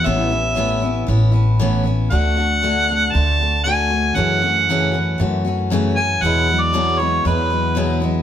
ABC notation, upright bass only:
X:1
M:4/4
L:1/8
Q:1/4=117
K:A
V:1 name="Upright bass" clef=bass
A,,,4 A,,,4 | D,,4 D,,4 | F,,4 F,,4 | E,,4 E,,4 |]